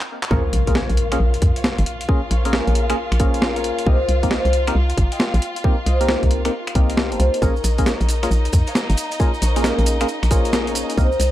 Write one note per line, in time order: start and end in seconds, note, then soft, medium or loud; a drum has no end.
0.01 clap medium
0.23 clap loud
0.31 0.49 A#1 loud
0.31 0.42 A#3 loud
0.31 0.42 C#4 medium
0.31 0.42 F4 medium
0.31 7.43 F4 medium
0.31 0.42 G#4 medium
0.31 0.74 A#4 medium
0.31 0.42 A#4 loud
0.31 0.75 C#5 loud
0.31 7.43 F5 medium
0.31 kick loud
0.31 impact medium
0.53 0.84 A#1 medium
0.53 closed hi-hat loud
0.67 0.79 A#3 medium
0.67 0.79 C#4 medium
0.67 0.79 F4 medium
0.67 0.79 G#4 medium
0.67 0.79 A#4 loud
0.67 kick medium
0.67 closed hi-hat medium
0.75 2.30 A#4 medium
0.75 1.56 C#5 medium
0.75 snare loud
0.90 1.16 A#1 medium
0.90 closed hi-hat soft
0.97 closed hi-hat loud
1.12 1.18 A#3 medium
1.12 1.18 C#4 medium
1.12 1.18 F4 medium
1.12 1.18 G#4 medium
1.12 1.18 A#4 loud
1.12 finger snap medium
1.12 closed hi-hat medium
1.20 1.38 A#1 medium
1.34 closed hi-hat medium
1.42 1.53 F2 medium
1.42 kick loud
1.42 closed hi-hat loud
1.56 2.31 C#5 medium
1.56 3.23 F5 medium
1.56 closed hi-hat medium
1.64 snare loud
1.64 closed hi-hat medium
1.78 1.84 G#1 loud
1.78 closed hi-hat medium
1.86 closed hi-hat loud
2.01 closed hi-hat medium
2.09 2.20 A#3 medium
2.09 2.20 C#4 medium
2.09 2.20 F4 medium
2.09 2.20 G#4 medium
2.09 2.20 A#4 medium
2.09 kick loud
2.30 2.61 A#1 medium
2.30 3.19 A#4 medium
2.30 3.19 C#5 loud
2.30 closed hi-hat loud
2.45 2.86 A#3 medium
2.45 2.86 C#4 medium
2.45 2.86 F4 medium
2.45 2.86 G#4 medium
2.45 2.86 A#4 medium
2.45 closed hi-hat medium
2.53 snare loud
2.67 2.94 A#1 medium
2.67 closed hi-hat soft
2.75 closed hi-hat loud
2.90 2.96 A#3 medium
2.90 2.96 C#4 medium
2.90 2.96 F4 medium
2.90 2.96 G#4 medium
2.90 2.96 A#4 loud
2.90 finger snap medium
2.90 closed hi-hat medium
3.12 3.73 A#1 medium
3.12 finger snap medium
3.12 closed hi-hat medium
3.19 3.85 A#3 medium
3.19 3.85 C#4 medium
3.19 3.85 F4 medium
3.19 3.85 G#4 medium
3.19 3.56 A#4 medium
3.19 3.85 A#4 loud
3.19 3.56 C#5 medium
3.19 kick loud
3.19 closed hi-hat loud
3.34 closed hi-hat medium
3.42 snare loud
3.56 5.68 A#4 medium
3.56 3.92 C#5 medium
3.56 closed hi-hat medium
3.64 closed hi-hat loud
3.79 closed hi-hat medium
3.86 4.05 C2 loud
3.86 3.98 A#3 loud
3.86 3.98 C4 medium
3.86 3.98 D#4 medium
3.86 3.98 G4 medium
3.86 3.98 A#4 loud
3.86 4.30 C5 medium
3.86 4.31 D#5 loud
3.86 kick loud
4.09 4.39 C2 medium
4.09 closed hi-hat loud
4.23 4.35 A#3 medium
4.23 4.35 C4 medium
4.23 4.35 D#4 medium
4.23 4.35 G4 medium
4.23 4.35 A#4 loud
4.23 kick medium
4.23 closed hi-hat medium
4.30 5.86 C5 medium
4.30 5.11 D#5 loud
4.30 snare loud
4.45 4.72 C2 loud
4.45 closed hi-hat soft
4.53 closed hi-hat loud
4.67 4.74 A#3 medium
4.67 4.74 C4 medium
4.67 4.74 D#4 medium
4.67 4.74 G4 medium
4.67 4.74 A#4 loud
4.67 finger snap medium
4.67 closed hi-hat medium
4.75 4.93 C2 medium
4.90 closed hi-hat medium
4.97 5.08 G1 medium
4.97 kick loud
4.97 closed hi-hat loud
5.12 5.86 D#5 medium
5.12 6.67 G5 medium
5.12 closed hi-hat medium
5.20 snare loud
5.20 closed hi-hat medium
5.34 5.40 A#1 loud
5.34 closed hi-hat soft
5.42 closed hi-hat loud
5.56 closed hi-hat medium
5.64 5.76 A#3 medium
5.64 5.76 C4 medium
5.64 5.76 D#4 medium
5.64 5.76 G4 medium
5.64 5.76 A#4 medium
5.64 kick loud
5.86 6.17 C2 medium
5.86 7.11 C5 medium
5.86 6.75 D#5 loud
5.86 closed hi-hat loud
6.01 6.42 A#3 medium
6.01 6.42 C4 medium
6.01 6.42 D#4 medium
6.01 6.42 G4 medium
6.01 6.42 A#4 medium
6.01 closed hi-hat medium
6.09 snare loud
6.23 6.50 C2 medium
6.23 kick medium
6.23 closed hi-hat soft
6.31 closed hi-hat loud
6.45 6.52 A#3 medium
6.45 6.52 C4 medium
6.45 6.52 D#4 medium
6.45 6.52 G4 medium
6.45 6.52 A#4 loud
6.45 finger snap medium
6.45 closed hi-hat medium
6.67 finger snap medium
6.67 closed hi-hat medium
6.75 7.13 C2 medium
6.75 7.40 A#3 medium
6.75 7.40 C4 medium
6.75 7.40 D#4 medium
6.75 7.40 G4 medium
6.75 7.40 A#4 medium
6.75 8.53 D#5 medium
6.75 8.31 G5 medium
6.75 kick loud
6.75 closed hi-hat loud
6.90 closed hi-hat medium
6.97 snare loud
7.12 7.18 G1 loud
7.12 7.48 C5 medium
7.12 7.48 A5 medium
7.12 closed hi-hat medium
7.20 7.30 C2 medium
7.20 closed hi-hat loud
7.34 closed hi-hat medium
7.42 7.60 A#1 loud
7.42 7.54 A#3 loud
7.42 7.54 C#4 medium
7.42 11.31 D#4 medium
7.42 7.54 F4 medium
7.42 7.54 G#4 medium
7.42 7.86 A#4 medium
7.42 7.54 A#4 loud
7.42 7.86 C#5 loud
7.42 11.31 D#5 medium
7.42 kick loud
7.42 maracas medium
7.56 maracas soft
7.64 7.95 A#1 medium
7.64 closed hi-hat loud
7.64 maracas medium
7.78 7.91 A#3 medium
7.78 7.91 C#4 medium
7.78 7.91 F4 medium
7.78 7.91 G#4 medium
7.78 7.91 A#4 loud
7.78 kick medium
7.78 closed hi-hat medium
7.78 maracas soft
7.86 9.41 A#4 medium
7.86 8.67 C#5 loud
7.86 snare loud
7.86 maracas soft
8.01 8.28 A#1 medium
8.01 closed hi-hat soft
8.01 maracas soft
8.09 closed hi-hat loud
8.09 maracas medium
8.23 8.29 A#3 medium
8.23 8.29 C#4 medium
8.23 8.29 F4 medium
8.23 8.29 G#4 medium
8.23 8.29 A#4 loud
8.23 finger snap medium
8.23 closed hi-hat medium
8.23 maracas soft
8.31 8.49 A#1 loud
8.31 maracas medium
8.45 closed hi-hat medium
8.45 maracas soft
8.53 8.64 F2 medium
8.53 kick loud
8.53 closed hi-hat loud
8.53 maracas medium
8.67 9.42 C#5 medium
8.67 10.34 F5 medium
8.67 closed hi-hat medium
8.67 maracas soft
8.75 snare loud
8.75 closed hi-hat medium
8.75 maracas medium
8.90 8.95 G#1 loud
8.90 closed hi-hat medium
8.90 maracas soft
8.97 closed hi-hat loud
8.97 maracas medium
9.12 closed hi-hat medium
9.12 maracas soft
9.20 9.31 A#3 medium
9.20 9.31 C#4 medium
9.20 9.31 F4 medium
9.20 9.31 G#4 medium
9.20 9.31 A#4 medium
9.20 kick loud
9.20 maracas soft
9.34 maracas soft
9.42 9.73 A#1 loud
9.42 10.30 A#4 medium
9.42 10.31 C#5 medium
9.42 closed hi-hat loud
9.42 maracas medium
9.56 9.97 A#3 medium
9.56 9.97 C#4 medium
9.56 9.97 F4 medium
9.56 9.97 G#4 medium
9.56 9.97 A#4 medium
9.56 closed hi-hat medium
9.56 maracas soft
9.64 snare loud
9.64 maracas medium
9.79 10.05 A#1 loud
9.79 closed hi-hat soft
9.79 maracas soft
9.86 closed hi-hat loud
9.86 maracas medium
10.01 10.07 A#3 medium
10.01 10.07 C#4 medium
10.01 10.07 F4 medium
10.01 10.07 G#4 medium
10.01 10.07 A#4 loud
10.01 finger snap medium
10.01 closed hi-hat medium
10.01 maracas soft
10.08 maracas soft
10.23 10.84 A#1 medium
10.23 finger snap medium
10.23 closed hi-hat medium
10.23 maracas soft
10.31 10.96 A#3 medium
10.31 10.96 C#4 medium
10.31 10.96 F4 medium
10.31 10.96 G#4 medium
10.31 10.67 A#4 medium
10.31 10.96 A#4 medium
10.31 10.67 C#5 loud
10.31 kick loud
10.31 closed hi-hat loud
10.31 maracas medium
10.45 closed hi-hat medium
10.45 maracas soft
10.53 snare loud
10.53 maracas medium
10.67 11.31 A#4 medium
10.67 11.03 C#5 medium
10.67 closed hi-hat medium
10.67 maracas soft
10.75 closed hi-hat loud
10.75 maracas loud
10.90 closed hi-hat medium
10.90 maracas soft
10.97 11.16 C2 loud
10.97 11.09 A#3 loud
10.97 11.09 C4 medium
10.97 11.09 D#4 medium
10.97 11.09 G4 medium
10.97 11.09 A#4 loud
10.97 11.31 C5 medium
10.97 11.31 D#5 loud
10.97 kick loud
10.97 maracas medium
11.12 maracas soft
11.20 11.31 C2 medium
11.20 closed hi-hat loud
11.20 maracas medium